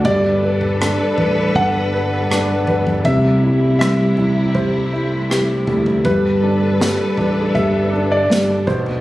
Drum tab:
SD |----r-------r---|----r-------r---|----o-------o---|
FT |o--o--o-o-----oo|o-----o-o-----oo|o-----o-o-----oo|
BD |o-------o-------|o-------o-------|o-------o-----o-|